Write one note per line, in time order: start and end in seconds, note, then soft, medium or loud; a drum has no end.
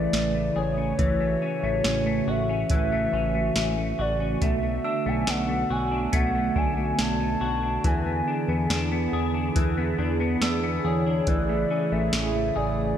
0.00 4.38 C#3 medium
0.00 0.98 E3 medium
0.00 4.38 E3 medium
0.00 0.34 A3 medium
0.00 4.38 A3 medium
0.00 0.77 C#4 medium
0.00 0.95 E4 medium
0.00 0.55 G#4 medium
0.00 0.59 D5 loud
0.13 0.51 A1 medium
0.13 snare medium
0.13 closed hi-hat medium
0.35 1.20 A3 soft
0.56 0.93 A1 medium
0.56 1.07 G#4 medium
0.56 2.31 C#5 medium
0.77 1.41 C#4 medium
0.99 1.36 A1 loud
0.99 2.70 E3 medium
0.99 7.80 F#4 medium
0.99 kick medium
0.99 closed hi-hat medium
1.20 1.63 A3 soft
1.42 1.84 C#4 soft
1.63 1.82 A1 medium
1.63 2.06 A3 medium
1.84 2.22 A1 loud
1.84 2.48 C#4 soft
1.84 snare loud
1.84 closed hi-hat medium
2.06 2.92 A3 medium
2.27 2.65 A1 medium
2.27 3.98 F#4 medium
2.27 4.02 E5 loud
2.49 3.12 C#4 soft
2.70 3.08 A1 medium
2.70 4.50 E3 medium
2.70 kick medium
2.70 closed hi-hat medium
2.92 3.34 A3 medium
3.12 3.50 A1 loud
3.12 3.55 C#4 medium
3.35 3.77 A3 medium
3.56 3.93 A1 medium
3.56 4.19 C#4 medium
3.56 snare loud
3.56 closed hi-hat medium
3.77 4.41 A3 soft
3.99 4.36 A1 medium
3.99 5.70 F#4 medium
3.99 4.43 D5 medium
4.20 4.50 C#4 soft
4.41 4.79 B1 medium
4.41 11.23 D3 medium
4.41 4.62 A3 medium
4.41 7.81 A3 medium
4.41 7.81 B3 medium
4.41 5.10 E5 medium
4.41 kick medium
4.41 closed hi-hat medium
4.63 5.05 A3 soft
4.84 5.27 D4 medium
4.84 6.64 E6 medium
5.06 5.25 B1 medium
5.06 5.48 A3 medium
5.06 5.32 G#5 medium
5.27 5.65 B1 loud
5.27 5.91 D4 medium
5.27 5.73 F#5 loud
5.27 snare loud
5.27 closed hi-hat medium
5.49 6.11 A3 medium
5.70 6.08 B1 medium
5.70 7.40 F#4 medium
5.70 6.14 G#5 medium
5.91 6.55 D4 soft
6.13 6.51 B1 medium
6.13 6.33 A3 medium
6.13 6.59 F#5 loud
6.13 6.98 G#6 soft
6.13 kick loud
6.13 closed hi-hat medium
6.34 6.76 A3 medium
6.56 6.93 B1 loud
6.56 6.98 D4 medium
6.56 7.02 G#5 medium
6.56 kick medium
6.77 7.19 A3 medium
6.98 7.36 B1 medium
6.98 7.63 D4 medium
6.98 7.88 A5 loud
6.98 8.23 G#6 soft
6.98 snare medium
6.98 closed hi-hat medium
7.20 7.93 A3 soft
7.41 7.79 B1 medium
7.41 7.93 F#4 medium
7.63 8.27 D4 soft
7.84 8.22 E2 loud
7.84 12.98 E3 medium
7.84 9.55 E3 medium
7.84 11.24 B3 medium
7.84 12.98 E4 medium
7.84 12.98 G#4 medium
7.84 8.71 G#5 medium
7.84 kick medium
7.84 closed hi-hat medium
8.06 8.47 B3 soft
8.28 8.69 D4 soft
8.48 8.67 E2 medium
8.48 8.90 B3 medium
8.70 9.08 E2 loud
8.70 9.33 D4 medium
8.70 snare loud
8.70 closed hi-hat medium
8.92 9.76 B3 soft
9.13 9.50 E2 medium
9.13 10.84 G#4 medium
9.34 9.97 D4 soft
9.56 9.94 E2 medium
9.56 11.27 E3 medium
9.56 kick medium
9.56 closed hi-hat medium
9.77 10.19 B3 medium
9.98 10.36 E2 medium
9.98 10.41 D4 medium
10.20 10.62 B3 medium
10.41 10.79 E2 medium
10.41 11.05 D4 medium
10.41 11.66 E6 medium
10.41 snare loud
10.41 closed hi-hat medium
10.63 11.36 B3 soft
10.84 11.22 E2 medium
10.84 11.52 G#4 medium
10.84 11.30 C#5 medium
11.06 11.36 D4 medium
11.27 11.65 A1 loud
11.27 12.98 C#3 medium
11.27 12.98 E3 medium
11.27 12.98 A3 medium
11.27 11.94 D5 loud
11.27 kick medium
11.27 closed hi-hat medium
11.49 11.92 A3 soft
11.70 12.13 C#4 medium
11.92 12.11 A1 medium
11.92 12.35 A3 medium
11.92 12.58 E5 medium
12.13 12.51 A1 loud
12.13 12.98 C#4 medium
12.13 snare loud
12.13 closed hi-hat medium
12.35 12.98 A3 soft
12.56 12.94 A1 medium
12.56 12.98 G#4 medium
12.56 12.98 D5 loud